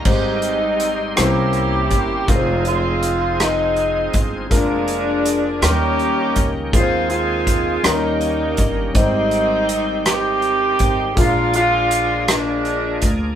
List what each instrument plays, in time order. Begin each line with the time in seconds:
0.05 upright bass G#1, grand piano G#2 G3 D#4 G4 C5, tonewheel organ G3 D#4 G4 C5, saxophone section G3 C4 D#4, kick, crash
0.42 closed hi-hat
0.80 closed hi-hat
1.16 upright bass C2, grand piano C3 A#3 C#4 E4 C5, tonewheel organ A#3 C#4 E4 C5, saxophone section A#3 E4 G4, cross-stick, closed hi-hat
1.53 closed hi-hat
1.91 upright bass G1, kick, closed hi-hat
2.27 upright bass F1, tonewheel organ F3 C4 D#4 G#4, grand piano G#3 D#4 F4 A#4, saxophone section G#3 C4 F4, kick, closed hi-hat
2.36 grand piano C5
2.65 saxophone section G#3 C4 F4, closed hi-hat
3.03 closed hi-hat
3.40 saxophone section G#3 C4 D#4, cross-stick, closed hi-hat
3.76 closed hi-hat
4.13 upright bass G1, kick, closed hi-hat
4.50 upright bass F1, tonewheel organ F3 A#3 C4 G#4, grand piano G#3 D4 F4 A#4, saxophone section G#3 A#3 D4, kick, closed hi-hat
4.57 tonewheel organ D4
4.88 closed hi-hat
5.26 closed hi-hat
5.62 upright bass D#2, grand piano D#3 F#3 C#4 D#4 A#4, tonewheel organ D#3 A#3 C#4 G4, saxophone section A#3 C#4 G4, cross-stick, closed hi-hat
5.68 grand piano G3
5.99 closed hi-hat
6.36 upright bass C#2, kick, closed hi-hat
6.72 upright bass D#2, tonewheel organ D#3 G#3 C4 G#4, grand piano D#3 G#3 C4 D#4 A#4, saxophone section G#3 C4 F4, kick, closed hi-hat
6.80 grand piano C5
7.10 saxophone section G#3 C4 F4, closed hi-hat
7.47 kick, closed hi-hat
7.83 upright bass D#2, grand piano D#3 G3 C#4 D#4 A#4, tonewheel organ D#3 A#3 C#4 F#4, saxophone section G3 A#3 D#4, cross-stick, closed hi-hat
7.91 tonewheel organ G4
8.21 closed hi-hat
8.57 upright bass G1, kick, closed hi-hat
8.94 upright bass G#1, grand piano G#2 G3 D#4 G4 C5, tonewheel organ D#3 G3 C4 G4, saxophone section G3 C4 D#4, kick, closed hi-hat
9.31 closed hi-hat
9.69 closed hi-hat
10.06 saxophone section C4 D#4 G4, cross-stick, closed hi-hat
10.42 closed hi-hat
10.79 upright bass G#1, kick, closed hi-hat
11.15 upright bass A#1, grand piano A#2 G#3 D4 F4 A#4, tonewheel organ F3 A#3 C#4 G#4, saxophone section G#3 D4 F4, kick, closed hi-hat
11.24 tonewheel organ D4
11.54 saxophone section G#3 D4 F4, closed hi-hat
11.91 closed hi-hat
12.28 saxophone section F3 G#3 D4, cross-stick, closed hi-hat
12.65 closed hi-hat
13.02 upright bass D2, kick, closed hi-hat